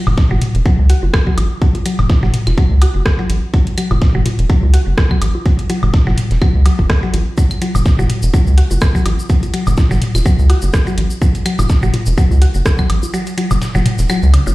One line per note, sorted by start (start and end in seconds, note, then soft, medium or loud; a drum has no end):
0.07 0.14 F#1 medium
0.07 closed hi-hat soft
0.07 mid tom medium
0.07 high woodblock medium
0.18 kick loud
0.18 snare loud
0.18 closed hi-hat medium
0.31 0.38 F#1 medium
0.31 0.36 F#3 medium
0.31 mid tom medium
0.31 low bongo soft
0.42 closed hi-hat medium
0.42 mid tom medium
0.55 0.62 E1 loud
0.55 closed hi-hat soft
0.66 0.72 F#3 medium
0.66 kick loud
0.66 closed hi-hat medium
0.66 low bongo soft
0.79 0.94 C#2 medium
0.90 0.93 F#4 medium
0.90 closed hi-hat medium
1.03 1.10 F#1 medium
1.03 low bongo soft
1.14 kick loud
1.14 cross-stick loud
1.14 snare loud
1.14 closed hi-hat medium
1.14 claves medium
1.27 1.34 F#3 medium
1.27 kick medium
1.38 1.46 A1 medium
1.38 closed hi-hat medium
1.38 low bongo soft
1.38 high woodblock medium
1.62 1.65 F#3 medium
1.62 kick loud
1.62 closed hi-hat medium
1.75 closed hi-hat soft
1.75 low bongo soft
1.86 1.89 F#3 medium
1.86 closed hi-hat medium
1.99 2.06 F#1 medium
1.99 closed hi-hat soft
1.99 mid tom medium
1.99 high woodblock medium
2.10 kick loud
2.10 snare loud
2.10 closed hi-hat medium
2.10 low bongo soft
2.23 2.30 F#1 medium
2.23 2.28 F#3 loud
2.23 snare medium
2.23 mid tom medium
2.34 closed hi-hat medium
2.34 mid tom loud
2.47 2.54 E1 loud
2.47 snare soft
2.47 closed hi-hat soft
2.47 low bongo soft
2.47 claves medium
2.58 2.64 F#3 medium
2.58 kick loud
2.58 closed hi-hat medium
2.71 2.86 C#2 medium
2.82 2.85 F#4 medium
2.82 closed hi-hat medium
2.82 open hi-hat medium
2.82 low bongo soft
2.82 high woodblock medium
2.95 3.02 F#1 medium
3.06 kick loud
3.06 cross-stick loud
3.06 snare loud
3.06 closed hi-hat medium
3.19 3.26 F#3 medium
3.19 closed hi-hat soft
3.19 low bongo soft
3.30 3.38 A1 medium
3.30 closed hi-hat medium
3.54 3.57 F#3 medium
3.54 kick loud
3.54 closed hi-hat medium
3.54 low bongo soft
3.67 closed hi-hat soft
3.78 3.81 F#3 medium
3.78 closed hi-hat medium
3.78 claves medium
3.91 3.98 F#1 medium
3.91 closed hi-hat soft
3.91 mid tom medium
3.91 low bongo soft
3.91 high woodblock medium
4.02 kick loud
4.02 snare loud
4.02 closed hi-hat medium
4.15 4.22 F#1 medium
4.15 4.20 F#3 loud
4.15 mid tom medium
4.26 closed hi-hat medium
4.26 mid tom medium
4.26 low bongo soft
4.39 4.46 E1 loud
4.39 closed hi-hat soft
4.50 4.56 F#3 loud
4.50 kick loud
4.50 closed hi-hat medium
4.63 4.78 C#2 medium
4.63 low bongo soft
4.74 4.77 F#4 medium
4.74 closed hi-hat medium
4.87 4.94 F#1 medium
4.98 kick loud
4.98 cross-stick loud
4.98 snare loud
4.98 closed hi-hat medium
4.98 low bongo soft
5.11 5.18 F#3 medium
5.11 kick medium
5.11 claves medium
5.22 5.30 A1 medium
5.22 closed hi-hat medium
5.22 high woodblock medium
5.35 low bongo soft
5.46 5.49 F#3 medium
5.46 kick loud
5.46 closed hi-hat medium
5.59 closed hi-hat soft
5.70 5.73 F#3 medium
5.70 closed hi-hat medium
5.70 low bongo soft
5.83 5.90 F#1 medium
5.83 closed hi-hat soft
5.83 mid tom medium
5.83 high woodblock medium
5.94 kick loud
5.94 snare loud
5.94 closed hi-hat medium
6.07 6.14 F#1 medium
6.07 6.12 F#3 loud
6.07 snare medium
6.07 mid tom medium
6.07 low bongo soft
6.18 closed hi-hat medium
6.18 mid tom medium
6.31 6.38 E1 loud
6.31 snare soft
6.31 closed hi-hat soft
6.42 6.48 F#3 loud
6.42 kick loud
6.42 closed hi-hat medium
6.42 low bongo soft
6.42 claves medium
6.55 6.70 C#2 medium
6.66 6.75 F#3 medium
6.66 closed hi-hat medium
6.66 open hi-hat medium
6.66 high woodblock medium
6.79 6.86 F#1 medium
6.79 kick medium
6.79 low bongo soft
6.90 kick loud
6.90 cross-stick loud
6.90 snare loud
6.90 closed hi-hat medium
7.03 7.08 F#3 medium
7.03 closed hi-hat soft
7.14 7.22 A1 medium
7.14 closed hi-hat medium
7.14 low bongo soft
7.38 7.41 F#3 medium
7.38 kick loud
7.38 closed hi-hat medium
7.38 shaker medium
7.51 closed hi-hat soft
7.51 claves medium
7.51 shaker soft
7.62 7.65 F#3 medium
7.62 closed hi-hat medium
7.62 low bongo soft
7.75 7.82 F#1 loud
7.75 closed hi-hat soft
7.75 mid tom medium
7.75 high woodblock medium
7.75 shaker medium
7.86 kick loud
7.86 snare loud
7.86 closed hi-hat medium
7.86 shaker medium
7.99 8.06 F#1 medium
7.99 8.04 F#3 loud
7.99 mid tom medium
7.99 low bongo soft
7.99 shaker soft
8.10 closed hi-hat medium
8.10 mid tom medium
8.23 8.30 E1 loud
8.23 closed hi-hat soft
8.23 shaker medium
8.34 8.40 F#3 medium
8.34 kick loud
8.34 closed hi-hat medium
8.34 low bongo soft
8.34 shaker medium
8.47 8.62 C#2 medium
8.47 shaker soft
8.58 8.61 F#4 medium
8.58 closed hi-hat medium
8.71 8.78 F#1 medium
8.71 low bongo soft
8.71 shaker medium
8.81 kick loud
8.81 cross-stick medium
8.81 snare loud
8.81 closed hi-hat medium
8.81 claves medium
8.81 shaker medium
8.95 9.02 F#3 medium
8.95 kick medium
8.95 shaker soft
9.06 9.14 A1 medium
9.06 closed hi-hat medium
9.06 low bongo soft
9.06 high woodblock medium
9.19 shaker medium
9.29 9.33 F#3 medium
9.29 kick loud
9.29 closed hi-hat medium
9.29 shaker medium
9.43 closed hi-hat soft
9.43 low bongo soft
9.43 shaker soft
9.54 9.57 F#3 medium
9.54 closed hi-hat medium
9.67 9.74 F#1 medium
9.67 closed hi-hat soft
9.67 mid tom medium
9.67 high woodblock medium
9.67 shaker medium
9.77 kick loud
9.77 snare loud
9.77 closed hi-hat medium
9.77 low bongo soft
9.77 shaker medium
9.91 9.98 F#1 medium
9.91 9.96 F#3 loud
9.91 snare medium
9.91 mid tom medium
9.91 shaker soft
10.02 closed hi-hat medium
10.02 mid tom medium
10.15 10.22 E1 loud
10.15 snare soft
10.15 closed hi-hat soft
10.15 low bongo soft
10.15 claves medium
10.15 shaker medium
10.26 10.32 F#3 loud
10.26 kick loud
10.26 closed hi-hat medium
10.26 shaker medium
10.39 10.54 C#2 medium
10.39 shaker soft
10.50 10.53 F#4 medium
10.50 closed hi-hat medium
10.50 open hi-hat medium
10.50 low bongo soft
10.50 high woodblock medium
10.62 10.70 F#1 medium
10.62 shaker medium
10.73 kick loud
10.73 cross-stick loud
10.73 snare loud
10.73 closed hi-hat medium
10.73 shaker medium
10.87 10.94 F#3 medium
10.87 closed hi-hat soft
10.87 low bongo soft
10.87 shaker soft
10.98 11.06 A1 medium
10.98 closed hi-hat medium
11.10 shaker medium
11.22 11.25 F#3 medium
11.22 kick loud
11.22 closed hi-hat medium
11.22 low bongo soft
11.22 shaker medium
11.35 closed hi-hat soft
11.35 shaker soft
11.46 11.49 F#3 medium
11.46 closed hi-hat medium
11.46 claves medium
11.59 11.66 F#1 medium
11.59 closed hi-hat soft
11.59 mid tom medium
11.59 low bongo soft
11.59 high woodblock medium
11.59 shaker medium
11.69 kick loud
11.69 snare loud
11.69 closed hi-hat medium
11.69 shaker medium
11.83 11.90 F#1 medium
11.83 11.88 F#3 loud
11.83 mid tom medium
11.83 shaker soft
11.94 closed hi-hat medium
11.94 mid tom medium
11.94 low bongo soft
12.06 12.14 E1 loud
12.06 closed hi-hat soft
12.06 shaker medium
12.18 12.24 F#3 loud
12.18 kick loud
12.18 closed hi-hat medium
12.18 shaker medium
12.31 12.46 C#2 medium
12.31 low bongo soft
12.31 shaker soft
12.42 12.45 F#4 medium
12.42 closed hi-hat medium
12.54 12.62 F#1 medium
12.54 shaker medium
12.66 kick loud
12.66 cross-stick loud
12.66 snare loud
12.66 closed hi-hat medium
12.66 low bongo soft
12.66 shaker medium
12.78 12.86 F#3 medium
12.78 kick medium
12.78 claves medium
12.78 shaker soft
12.90 12.98 A1 medium
12.90 closed hi-hat medium
12.90 high woodblock medium
13.03 low bongo soft
13.03 shaker medium
13.14 13.17 F#3 medium
13.14 closed hi-hat medium
13.14 shaker medium
13.26 closed hi-hat soft
13.26 shaker soft
13.38 13.41 F#3 medium
13.38 closed hi-hat medium
13.38 low bongo soft
13.51 13.58 F#1 loud
13.51 closed hi-hat soft
13.51 mid tom medium
13.51 high woodblock medium
13.51 shaker medium
13.62 snare loud
13.62 closed hi-hat medium
13.62 shaker medium
13.75 13.82 F#1 medium
13.75 13.80 F#3 loud
13.75 snare medium
13.75 mid tom medium
13.75 low bongo soft
13.75 shaker soft
13.86 closed hi-hat medium
13.86 mid tom loud
13.99 14.06 E1 loud
13.99 snare soft
13.99 closed hi-hat soft
13.99 shaker medium
14.09 14.16 F#3 loud
14.09 closed hi-hat medium
14.09 low bongo soft
14.09 claves medium
14.09 shaker medium
14.23 14.38 C#2 medium
14.23 shaker soft
14.34 14.37 C#3 medium
14.34 closed hi-hat medium
14.34 high woodblock medium
14.47 14.54 F#1 medium
14.47 14.52 C#3 medium
14.47 low bongo soft
14.47 shaker medium